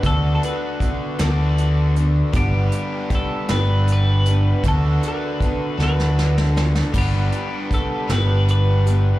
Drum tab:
CC |------------|------------|------------|x-----------|
HH |x-x-x-x-x-x-|x-x-x-x-x-x-|x-x-x-------|x-x-x-x-x-x-|
SD |------o-----|------o-----|------oooooo|------o-----|
BD |o---o-------|o---o-------|o---o-------|o---o-------|